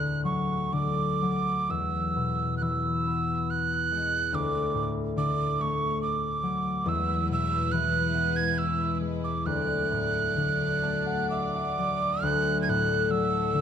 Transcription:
0.00 1.75 D2 soft
0.00 0.72 D3 soft
0.00 0.24 F#6 medium
0.24 0.79 F#3 soft
0.24 0.74 C#6 medium
0.73 1.75 D3 soft
0.73 1.72 D6 medium
1.22 1.75 F#3 soft
1.70 4.38 E2 soft
1.70 2.55 E6 medium
2.16 4.38 B2 soft
2.57 4.38 E3 soft
2.57 2.64 F#6 soft
2.63 3.52 E6 medium
3.07 6.17 B3 soft
3.50 4.36 F#6 medium
3.92 4.38 G#3 soft
4.33 6.91 D2 soft
4.33 4.92 D6 medium
4.74 5.22 A2 soft
5.17 6.91 D3 soft
5.17 5.63 D6 medium
5.59 8.92 A3 soft
5.59 6.02 C#6 medium
6.02 6.90 D6 medium
6.43 6.91 F#3 soft
6.84 9.51 E2 medium
6.84 9.43 G#3 medium
6.84 9.43 E4 medium
6.84 9.43 B4 medium
6.89 7.31 E6 medium
7.29 9.51 B2 soft
7.29 7.73 E6 medium
7.72 9.51 E3 soft
7.72 8.38 F#6 medium
8.14 11.25 B3 soft
8.36 8.60 G#6 medium
8.58 8.98 E6 medium
9.01 9.51 G#3 soft
9.24 9.48 D6 medium
9.45 12.22 D2 soft
9.45 12.19 F#3 medium
9.45 12.20 D4 soft
9.45 12.20 D5 medium
9.45 11.29 F#6 medium
9.91 10.41 A2 soft
10.36 12.28 D3 soft
10.83 13.61 A3 soft
10.83 12.28 A5 soft
11.06 11.54 F#5 soft
11.30 13.03 E5 soft
11.30 12.25 D6 medium
11.55 13.16 F#5 soft
11.78 12.28 F#3 soft
11.78 13.61 D5 soft
12.22 13.61 D2 medium
12.22 13.61 F#3 medium
12.22 13.61 D4 medium
12.22 13.61 A4 medium
12.22 12.61 F#6 medium
12.62 12.71 G#6 medium
12.68 13.59 A2 soft
12.68 13.05 F#6 medium
13.05 13.12 F#6 medium
13.11 13.59 F#3 soft
13.11 13.61 E6 medium
13.54 13.61 D3 soft

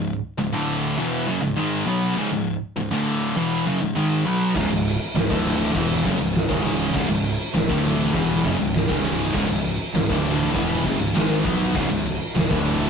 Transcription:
0.00 0.17 C#2 medium
0.00 0.17 G#2 medium
0.38 0.53 C#2 medium
0.38 0.53 G#2 medium
0.53 0.97 D2 medium
0.53 0.97 A2 medium
0.53 0.97 D3 loud
0.98 1.26 E2 loud
0.98 1.27 B2 loud
0.98 1.27 E3 loud
1.27 1.41 F#2 medium
1.27 1.42 C#3 loud
1.42 1.56 C#2 medium
1.42 1.56 G#2 medium
1.57 1.85 G#2 loud
1.57 1.86 D#3 loud
1.57 1.86 G#3 loud
1.86 2.15 B2 medium
1.86 2.16 F#3 medium
1.86 2.16 B3 medium
2.17 2.30 C#2 loud
2.17 2.31 G#2 loud
2.32 2.55 C#2 medium
2.32 2.56 G#2 medium
2.77 2.90 C#2 medium
2.77 2.91 G#2 medium
2.91 3.35 D2 loud
2.91 3.35 A2 loud
2.91 3.35 D3 medium
3.37 3.65 E2 medium
3.37 3.65 B2 loud
3.37 3.66 E3 loud
3.67 3.80 F#2 loud
3.67 3.81 C#3 loud
3.83 3.96 C#2 medium
3.83 3.95 G#2 medium
3.96 4.25 G#2 medium
3.96 4.25 D#3 medium
3.96 4.25 G#3 loud
4.26 4.55 B2 medium
4.26 4.55 F#3 medium
4.26 4.55 B3 medium
4.55 4.69 C#1 medium
4.55 4.69 C#2 loud
4.55 4.70 G#2 loud
4.55 kick loud
4.55 crash medium
4.70 4.98 C#1 medium
4.70 4.94 C#2 medium
4.70 4.94 G#2 medium
4.85 crash medium
5.14 5.28 C#1 medium
5.14 5.29 C#2 medium
5.14 5.29 G#2 medium
5.14 snare loud
5.14 crash medium
5.29 5.72 D1 loud
5.29 5.74 D2 medium
5.29 5.74 A2 medium
5.29 5.74 D3 medium
5.29 kick loud
5.45 snare soft
5.45 crash medium
5.61 snare soft
5.74 6.02 E1 loud
5.74 6.03 E2 loud
5.74 6.03 B2 loud
5.74 6.04 E3 loud
5.74 kick loud
5.74 crash medium
6.03 6.19 F#1 loud
6.03 6.18 F#2 loud
6.03 6.18 C#3 loud
6.03 kick loud
6.03 crash medium
6.19 6.47 C#1 medium
6.19 6.43 C#2 medium
6.19 6.43 G#2 medium
6.35 snare loud
6.35 crash medium
6.48 6.91 C#1 loud
6.48 6.92 C#2 medium
6.48 6.93 G#2 loud
6.48 6.93 C#3 loud
6.48 kick loud
6.65 crash medium
6.94 7.08 C#1 medium
6.94 7.08 C#2 loud
6.94 7.08 G#2 loud
6.94 kick loud
6.94 crash medium
7.09 7.37 C#1 medium
7.09 7.33 C#2 medium
7.09 7.34 G#2 medium
7.25 crash medium
7.54 7.68 C#1 medium
7.54 7.68 C#2 medium
7.54 7.69 G#2 medium
7.54 snare loud
7.54 crash medium
7.69 8.11 D1 loud
7.69 8.13 D2 medium
7.69 8.14 A2 loud
7.69 8.14 D3 loud
7.69 kick loud
7.85 crash medium
8.02 snare soft
8.14 8.42 E1 loud
8.14 8.44 E2 loud
8.14 8.44 B2 loud
8.14 8.44 E3 loud
8.14 kick loud
8.14 crash medium
8.44 8.58 F#1 loud
8.44 8.59 F#2 loud
8.44 8.59 C#3 loud
8.44 kick loud
8.44 crash medium
8.59 8.87 C#1 medium
8.59 8.83 C#2 medium
8.59 8.84 G#2 medium
8.74 snare loud
8.74 crash medium
8.89 9.31 C#1 loud
8.89 9.33 C#2 loud
8.89 9.33 G#2 loud
8.89 9.34 C#3 loud
8.89 kick loud
9.05 crash medium
9.34 9.48 C#1 medium
9.34 9.49 C#2 loud
9.34 9.49 G#2 loud
9.34 kick loud
9.34 crash loud
9.49 9.77 C#1 medium
9.49 9.74 C#2 medium
9.49 9.74 G#2 medium
9.64 crash medium
9.94 10.08 C#1 loud
9.94 10.09 C#2 medium
9.94 10.10 G#2 medium
9.94 snare loud
9.94 crash medium
10.09 10.51 D1 medium
10.09 10.53 D2 medium
10.09 10.54 A2 medium
10.09 10.54 D3 medium
10.09 kick loud
10.25 crash medium
10.41 snare soft
10.54 10.83 E1 loud
10.54 10.83 E2 loud
10.54 10.84 B2 loud
10.54 10.84 E3 loud
10.54 kick loud
10.54 crash medium
10.84 10.98 F#1 loud
10.84 10.99 F#2 loud
10.84 10.99 C#3 loud
10.84 kick loud
10.84 crash medium
10.99 11.14 C#1 medium
10.99 11.15 C#2 medium
10.99 11.14 G#2 medium
11.15 11.43 G#1 medium
11.15 11.44 G#2 loud
11.15 11.45 D#3 loud
11.15 11.45 G#3 loud
11.15 snare loud
11.15 crash medium
11.44 11.73 B1 loud
11.44 11.74 B2 medium
11.44 11.75 F#3 medium
11.44 11.75 B3 loud
11.44 kick loud
11.44 crash medium
11.75 11.89 C#1 loud
11.75 11.90 C#2 loud
11.75 11.90 G#2 loud
11.75 kick loud
11.75 crash medium
11.91 12.18 C#1 medium
11.91 12.15 C#2 medium
11.91 12.15 G#2 medium
12.05 crash medium
12.35 12.49 C#1 loud
12.35 12.50 C#2 medium
12.35 12.51 G#2 medium
12.35 snare loud
12.35 crash medium
12.51 12.90 D1 medium
12.51 12.90 D2 medium
12.51 12.90 A2 loud
12.51 12.90 D3 loud
12.51 kick loud
12.67 snare soft
12.67 crash medium

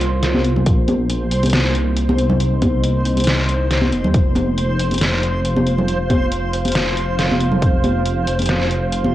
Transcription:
0.00 0.65 C2 medium
0.00 4.10 A#3 medium
0.00 0.63 F4 medium
0.00 9.15 C5 loud
0.00 9.15 C5 medium
0.00 closed hi-hat medium
0.23 snare medium
0.23 closed hi-hat medium
0.34 high conga medium
0.45 closed hi-hat medium
0.56 low conga medium
0.66 1.33 A#1 loud
0.66 4.11 D#4 medium
0.66 kick loud
0.66 closed hi-hat medium
0.88 closed hi-hat medium
0.88 high conga medium
1.10 closed hi-hat medium
1.31 3.04 C2 medium
1.31 open hi-hat medium
1.43 closed hi-hat soft
1.43 high conga medium
1.46 closed hi-hat medium
1.50 snare loud
1.50 closed hi-hat medium
1.53 closed hi-hat medium
1.75 closed hi-hat medium
1.97 closed hi-hat medium
2.09 high conga loud
2.19 closed hi-hat medium
2.30 low conga medium
2.40 closed hi-hat medium
2.62 kick medium
2.62 closed hi-hat medium
2.62 high conga medium
2.84 closed hi-hat medium
3.05 3.92 C2 medium
3.05 open hi-hat medium
3.17 closed hi-hat medium
3.17 high conga medium
3.20 closed hi-hat medium
3.24 snare loud
3.24 closed hi-hat medium
3.27 closed hi-hat medium
3.49 closed hi-hat medium
3.71 snare medium
3.71 closed hi-hat medium
3.82 high conga loud
3.92 4.03 F1 medium
3.92 closed hi-hat medium
4.04 4.13 D#2 medium
4.04 low conga medium
4.14 4.78 F1 loud
4.14 9.15 F4 medium
4.14 9.15 F5 medium
4.14 kick loud
4.14 closed hi-hat medium
4.35 closed hi-hat soft
4.35 high conga loud
4.58 closed hi-hat medium
4.79 6.52 F1 medium
4.79 open hi-hat medium
4.91 closed hi-hat soft
4.91 high conga medium
4.94 closed hi-hat medium
4.98 snare loud
4.98 closed hi-hat medium
5.01 closed hi-hat medium
5.23 closed hi-hat medium
5.45 closed hi-hat medium
5.56 high conga medium
5.66 closed hi-hat medium
5.78 low conga medium
5.88 closed hi-hat medium
6.10 kick medium
6.10 closed hi-hat soft
6.10 high conga medium
6.32 closed hi-hat medium
6.53 7.61 F1 medium
6.53 open hi-hat medium
6.65 closed hi-hat soft
6.65 high conga medium
6.68 closed hi-hat medium
6.72 snare loud
6.72 closed hi-hat medium
6.75 closed hi-hat medium
6.97 closed hi-hat soft
7.19 snare medium
7.19 closed hi-hat medium
7.31 high conga medium
7.40 closed hi-hat soft
7.51 low conga medium
7.62 8.26 F1 loud
7.62 kick loud
7.62 closed hi-hat medium
7.84 closed hi-hat medium
7.84 high conga medium
8.05 closed hi-hat medium
8.27 9.15 F1 medium
8.27 open hi-hat medium
8.39 closed hi-hat soft
8.39 high conga medium
8.42 closed hi-hat medium
8.46 snare loud
8.46 closed hi-hat medium
8.49 closed hi-hat medium
8.71 closed hi-hat medium
8.92 closed hi-hat medium
9.04 high conga medium

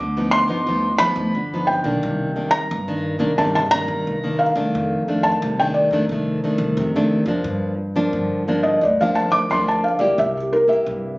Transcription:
0.00 0.42 D2 loud
0.00 0.64 D3 medium
0.00 0.33 D6 loud
0.17 0.45 F3 medium
0.17 0.45 B3 medium
0.17 0.46 D#4 medium
0.31 0.96 C6 loud
0.48 0.63 G1 medium
0.48 0.61 F3 medium
0.48 0.61 B3 medium
0.48 0.62 D#4 medium
0.67 1.10 D2 medium
0.67 1.32 G2 medium
0.67 0.88 F3 medium
0.67 0.88 B3 medium
0.67 0.88 D#4 medium
0.98 1.33 F3 medium
0.98 1.33 B3 medium
0.98 1.33 D#4 medium
0.98 1.70 B5 loud
1.16 1.31 D2 loud
1.35 1.78 G1 medium
1.35 2.00 D3 medium
1.54 1.81 F3 medium
1.54 1.82 B3 medium
1.54 1.82 D#4 medium
1.67 2.55 G5 medium
1.84 1.99 B1 medium
1.84 2.31 D#3 medium
1.84 2.31 A#3 medium
1.84 2.31 D4 medium
2.03 2.61 C2 loud
2.03 2.68 C3 medium
2.36 2.68 D#3 medium
2.36 2.68 A#3 medium
2.36 2.69 D4 medium
2.51 3.40 A#5 loud
2.71 3.35 G2 medium
2.71 3.14 G2 loud
2.88 3.17 D#3 medium
2.88 3.16 A#3 medium
2.88 3.17 D4 medium
3.19 3.35 C2 medium
3.19 3.32 D#3 medium
3.19 3.32 A#3 medium
3.19 3.33 D4 medium
3.38 3.82 G2 loud
3.38 4.03 C3 medium
3.38 3.59 D#3 medium
3.38 3.59 A#3 medium
3.38 3.59 D4 medium
3.38 3.43 A5 medium
3.55 3.60 A5 medium
3.71 4.18 D#3 medium
3.71 4.18 A#3 medium
3.71 4.18 D4 medium
3.71 4.42 A#5 loud
3.88 4.03 G2 loud
4.07 4.50 C2 medium
4.07 4.71 G2 medium
4.24 4.52 D#3 medium
4.24 4.52 A#3 medium
4.24 4.53 D4 medium
4.39 5.27 F5 medium
4.55 4.71 C2 medium
4.55 5.02 D#3 medium
4.55 5.02 A3 medium
4.55 5.03 D4 medium
4.75 5.39 F2 medium
4.75 5.32 F2 medium
5.08 5.54 D#3 medium
5.08 5.54 A3 medium
5.08 5.54 D4 medium
5.23 5.56 A5 medium
5.42 5.86 C2 loud
5.42 6.08 C3 medium
5.60 5.89 D#3 medium
5.60 5.89 A3 medium
5.60 5.89 D4 medium
5.60 5.65 G5 medium
5.74 6.73 D5 medium
5.91 6.06 F2 medium
5.91 6.04 D#3 medium
5.91 6.05 A3 medium
5.91 6.05 D4 medium
6.09 6.53 C2 medium
6.09 6.75 F2 medium
6.09 6.40 D#3 medium
6.09 6.40 A3 medium
6.09 6.40 D4 medium
6.44 6.90 D#3 medium
6.44 6.90 A3 medium
6.44 6.90 D4 medium
6.58 6.74 C2 loud
6.77 7.21 F2 medium
6.77 7.44 C3 medium
6.96 7.24 D#3 medium
6.96 7.24 A3 medium
6.96 7.24 D4 medium
7.26 7.42 F2 medium
7.26 7.74 F3 soft
7.26 7.74 A#3 medium
7.26 7.74 D4 medium
7.44 8.03 G2 loud
7.44 8.11 G2 medium
7.96 8.42 F3 medium
7.96 8.42 A#3 medium
7.96 8.42 D4 medium
8.13 8.71 G2 medium
8.13 8.79 D3 soft
8.48 8.80 F3 medium
8.48 8.80 A#3 medium
8.48 8.80 D4 medium
8.63 8.81 D#5 medium
8.81 9.25 D2 medium
8.81 9.48 G2 medium
8.81 8.99 D5 medium
9.01 9.46 F3 medium
9.01 9.46 A#3 medium
9.01 9.46 D4 medium
9.01 9.17 F5 medium
9.15 9.32 A5 medium
9.30 9.46 D2 medium
9.30 9.49 D6 medium
9.50 9.79 D2 medium
9.50 10.16 D3 soft
9.50 9.96 F3 soft
9.50 9.97 A#3 medium
9.50 9.97 D4 medium
9.50 9.67 C6 medium
9.68 9.84 A5 medium
9.84 10.01 F5 medium
9.99 10.14 C#2 medium
9.99 10.63 A#3 medium
9.99 10.64 E4 medium
9.99 10.64 G4 medium
9.99 10.17 D5 medium
10.18 10.76 C2 medium
10.18 10.84 C3 medium
10.18 10.35 E5 medium
10.37 10.53 G4 soft
10.53 10.69 A#4 medium
10.68 11.14 A#3 medium
10.68 11.14 E4 medium
10.68 11.15 G4 medium
10.68 11.19 E5 medium
10.86 11.19 C2 medium
10.86 11.19 G2 medium

